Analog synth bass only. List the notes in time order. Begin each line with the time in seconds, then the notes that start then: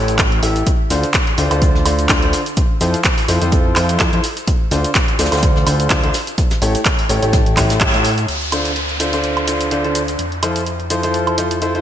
Already playing: A1
0.43 A1
0.90 D2
1.38 D2
1.51 D2
1.86 D2
2.09 D2
2.23 D2
2.81 F2
3.28 F2
3.42 F2
3.76 F2
4.00 F2
4.13 F2
4.71 D2
5.19 D2
5.32 D2
5.67 D2
5.90 D2
6.03 D2
6.62 A1
7.09 A1
7.23 A1
7.57 A1
7.81 A1
7.94 A2
8.28 D2
10.19 F2